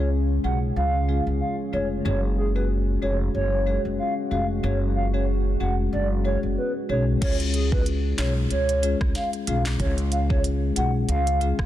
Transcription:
0.00 0.40 C#2 loud
0.00 2.02 C#3 medium
0.00 0.15 G#3 medium
0.00 0.16 C#4 medium
0.00 7.18 C#4 medium
0.00 0.16 F4 medium
0.00 2.02 F4 medium
0.00 0.16 G#4 medium
0.00 2.02 G#4 medium
0.44 0.72 B1 medium
0.44 0.65 G#3 medium
0.44 0.65 C#4 medium
0.44 0.65 F4 medium
0.44 0.65 G#4 medium
0.44 0.59 F#5 medium
0.76 1.19 C#2 loud
0.76 1.24 F5 loud
1.08 1.30 G#3 medium
1.08 1.30 C#4 medium
1.08 1.30 F4 medium
1.08 1.30 G#4 medium
1.27 1.39 C#2 medium
1.41 1.56 F5 medium
1.73 2.01 F1 medium
1.73 1.94 G#3 medium
1.73 1.94 C#4 medium
1.73 1.94 F4 medium
1.73 1.94 G#4 medium
1.73 1.88 C#5 medium
2.05 2.98 F#1 loud
2.05 2.51 G#3 medium
2.05 7.18 G#3 medium
2.05 2.51 C#4 medium
2.05 7.18 F#4 medium
2.05 2.52 F#4 medium
2.05 2.52 G#4 loud
2.05 2.20 C#5 loud
2.38 2.53 G#4 medium
2.56 2.73 G#3 medium
2.56 2.74 C#4 medium
2.56 2.74 F#4 medium
2.56 2.74 G#4 medium
2.56 2.67 B4 medium
3.02 3.30 F1 medium
3.02 3.23 G#3 medium
3.02 3.23 C#4 medium
3.02 3.23 F#4 medium
3.02 3.23 G#4 medium
3.02 3.17 C#5 medium
3.34 3.77 F#1 medium
3.34 3.82 C#5 loud
3.66 3.88 G#3 medium
3.66 3.88 C#4 medium
3.66 3.88 F#4 medium
3.66 3.88 G#4 medium
3.85 3.97 F#1 medium
3.99 4.14 F5 medium
4.31 4.59 F1 medium
4.31 4.52 G#3 medium
4.31 4.52 C#4 medium
4.31 4.52 F#4 medium
4.31 4.52 G#4 medium
4.31 4.46 F5 medium
4.63 5.56 F#1 loud
4.63 5.09 G#3 medium
4.63 5.09 C#4 medium
4.63 5.10 F#4 medium
4.63 5.10 G#4 medium
4.63 4.79 C#5 loud
4.96 5.11 F5 medium
5.14 5.32 G#3 medium
5.14 5.32 C#4 medium
5.14 5.32 F#4 medium
5.14 5.32 G#4 medium
5.14 5.26 C#5 medium
5.60 5.88 F1 medium
5.60 5.81 G#3 medium
5.60 5.81 C#4 medium
5.60 5.81 F#4 medium
5.60 5.81 G#4 medium
5.60 5.75 F#5 medium
5.93 6.35 F#1 loud
5.93 6.08 D5 medium
6.25 6.46 G#3 medium
6.25 6.46 C#4 medium
6.25 6.46 F#4 medium
6.25 6.46 G#4 medium
6.25 6.40 C#5 medium
6.43 6.55 F#1 medium
6.57 6.72 B4 medium
6.89 7.17 B1 medium
6.89 7.10 G#3 medium
6.89 7.10 C#4 medium
6.89 7.10 F#4 medium
6.89 7.10 G#4 medium
6.89 7.04 C#5 medium
7.22 8.15 C#2 loud
7.22 7.68 G#3 medium
7.22 7.68 C#4 medium
7.22 7.68 F4 medium
7.22 7.68 G#4 loud
7.22 7.37 C#5 loud
7.22 kick loud
7.22 closed hi-hat medium
7.22 crash loud
7.40 closed hi-hat medium
7.54 7.69 G#4 medium
7.54 closed hi-hat medium
7.72 7.90 G#3 medium
7.72 7.90 C#4 medium
7.72 7.90 F4 medium
7.72 7.90 G#4 medium
7.72 7.84 B4 medium
7.72 kick loud
7.86 closed hi-hat medium
8.18 8.46 B1 loud
8.18 8.39 C#4 medium
8.18 8.39 F4 medium
8.18 8.40 G#4 medium
8.18 8.33 C#5 medium
8.18 snare loud
8.18 clap loud
8.18 closed hi-hat medium
8.51 8.94 C#2 medium
8.51 8.98 C#5 loud
8.51 closed hi-hat medium
8.69 closed hi-hat medium
8.83 9.04 G#3 medium
8.83 9.04 C#4 medium
8.83 9.04 F4 medium
8.83 9.04 G#4 medium
8.83 closed hi-hat medium
9.01 9.13 C#2 loud
9.01 kick medium
9.01 cross-stick loud
9.15 9.30 F5 medium
9.15 snare medium
9.15 closed hi-hat medium
9.33 closed hi-hat medium
9.47 9.75 B1 loud
9.47 9.68 G#3 medium
9.47 9.68 C#4 medium
9.47 9.68 F4 medium
9.47 9.69 G#4 medium
9.47 9.62 F5 medium
9.47 closed hi-hat medium
9.65 snare loud
9.65 clap medium
9.79 10.73 C#2 loud
9.79 10.26 G#3 loud
9.79 10.26 C#4 medium
9.79 10.26 F4 medium
9.79 10.26 G#4 loud
9.79 9.95 C#5 loud
9.79 kick loud
9.79 closed hi-hat medium
9.98 closed hi-hat medium
10.12 10.27 F5 medium
10.12 closed hi-hat medium
10.30 10.48 G#3 medium
10.30 10.48 C#4 medium
10.30 10.48 F4 medium
10.30 10.48 G#4 medium
10.30 10.42 C#5 medium
10.30 kick loud
10.44 closed hi-hat medium
10.76 11.04 B1 medium
10.76 10.97 G#3 medium
10.76 10.97 C#4 medium
10.76 10.97 F4 medium
10.76 10.98 G#4 medium
10.76 10.91 F#5 medium
10.76 closed hi-hat medium
11.09 11.52 C#2 loud
11.09 11.56 F5 loud
11.09 closed hi-hat medium
11.27 closed hi-hat medium
11.41 11.62 G#3 medium
11.41 11.62 C#4 medium
11.41 11.62 F4 medium
11.41 11.62 G#4 medium
11.41 closed hi-hat medium
11.59 11.66 C#2 loud
11.59 kick medium
11.59 cross-stick loud

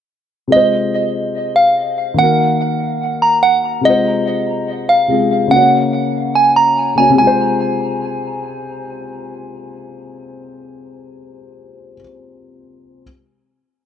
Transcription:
0.48 2.13 C3 medium
0.48 2.14 G#3 medium
0.52 2.16 F4 medium
0.52 2.17 C5 medium
0.52 1.52 D#5 loud
1.56 2.15 F5 medium
2.14 3.80 D#3 medium
2.14 3.81 A#3 medium
2.19 3.83 F#4 medium
2.19 3.19 F#5 loud
2.23 3.84 A#4 medium
3.22 3.39 A#5 medium
3.43 3.59 F#5 medium
3.81 5.06 C3 medium
3.81 5.07 G#3 medium
3.85 5.09 F4 medium
3.85 4.85 D#5 loud
3.90 5.10 C5 medium
4.89 5.48 F5 medium
5.08 5.51 C3 medium
5.08 5.51 G#3 soft
5.08 5.52 F4 soft
5.12 5.53 G#4 medium
5.48 6.92 C#3 medium
5.48 6.94 A#3 medium
5.48 6.31 F#5 medium
5.53 6.95 F#4 medium
5.53 6.97 C#5 medium
6.35 6.52 G#5 medium
6.56 6.95 A#5 medium
6.95 7.17 C#3 soft
6.95 7.18 A#3 soft
6.95 7.19 F#4 soft
6.95 7.14 G#5 medium
7.00 7.19 C#5 medium
7.10 11.93 C3 medium
7.16 11.96 G#3 medium
7.16 8.39 G#5 medium
7.21 11.99 F4 medium
7.27 12.02 C5 medium

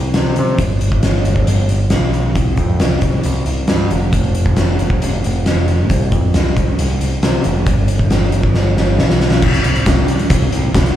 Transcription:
0.00 0.14 C2 medium
0.14 0.36 C3 medium
0.14 snare loud
0.14 closed hi-hat medium
0.36 0.57 C3 medium
0.36 closed hi-hat medium
0.58 1.00 G1 medium
0.58 kick loud
0.58 closed hi-hat medium
0.81 closed hi-hat medium
0.92 kick medium
1.03 1.25 G1 medium
1.03 snare medium
1.03 closed hi-hat medium
1.25 1.47 G1 medium
1.25 closed hi-hat medium
1.36 kick medium
1.47 1.69 G1 medium
1.47 closed hi-hat medium
1.69 1.91 G1 medium
1.69 closed hi-hat medium
1.90 2.36 B1 medium
1.90 snare medium
1.90 closed hi-hat medium
2.14 closed hi-hat soft
2.35 2.57 C2 medium
2.35 kick loud
2.35 closed hi-hat medium
2.57 2.79 F2 medium
2.57 kick medium
2.57 closed hi-hat medium
2.80 3.01 C2 medium
2.80 snare medium
2.80 closed hi-hat medium
3.01 3.23 C2 medium
3.01 kick medium
3.01 closed hi-hat medium
3.23 3.46 C2 medium
3.23 closed hi-hat medium
3.46 3.68 C2 medium
3.46 closed hi-hat medium
3.68 3.90 G2 medium
3.68 snare medium
3.68 closed hi-hat medium
3.91 4.12 F1 medium
3.91 closed hi-hat medium
4.13 4.54 F1 medium
4.13 kick loud
4.13 closed hi-hat medium
4.35 closed hi-hat medium
4.46 kick medium
4.56 4.79 F1 medium
4.56 snare loud
4.56 closed hi-hat medium
4.79 5.01 F1 medium
4.79 closed hi-hat medium
4.90 kick medium
5.02 5.23 F1 medium
5.02 closed hi-hat medium
5.24 5.45 F1 medium
5.24 closed hi-hat medium
5.46 5.90 F1 medium
5.46 snare medium
5.46 closed hi-hat medium
5.68 closed hi-hat soft
5.90 6.11 C2 medium
5.90 kick medium
5.90 closed hi-hat medium
6.12 6.33 F2 medium
6.12 kick medium
6.12 closed hi-hat medium
6.34 6.56 C2 medium
6.34 snare medium
6.34 closed hi-hat medium
6.56 6.77 C2 medium
6.56 kick medium
6.56 closed hi-hat medium
6.79 7.00 C2 loud
6.79 closed hi-hat medium
7.01 7.22 C2 medium
7.01 closed hi-hat medium
7.23 7.44 C3 medium
7.23 snare loud
7.23 closed hi-hat medium
7.44 7.66 F1 loud
7.44 closed hi-hat medium
7.66 8.08 G1 medium
7.66 kick loud
7.66 closed hi-hat medium
7.88 closed hi-hat medium
7.99 kick medium
8.10 8.32 G1 medium
8.10 snare loud
8.10 closed hi-hat medium
8.32 8.54 G1 medium
8.32 closed hi-hat medium
8.43 kick medium
8.54 8.76 G1 loud
8.54 snare medium
8.77 8.98 G1 medium
8.77 snare medium
8.99 9.42 B1 medium
8.99 snare medium
9.10 snare medium
9.20 snare medium
9.31 snare medium
9.42 9.59 C2 medium
9.42 kick loud
9.42 crash loud
9.54 closed hi-hat soft
9.64 9.81 C2 medium
9.64 closed hi-hat medium
9.75 closed hi-hat soft
9.86 10.19 C2 loud
9.86 kick loud
9.86 snare loud
9.86 closed hi-hat loud
10.08 closed hi-hat medium
10.19 closed hi-hat soft
10.30 10.47 C2 medium
10.30 kick loud
10.30 closed hi-hat loud
10.52 10.69 C2 medium
10.52 closed hi-hat medium
10.74 10.91 C2 medium
10.74 kick loud
10.74 snare loud
10.74 closed hi-hat loud
10.86 closed hi-hat medium

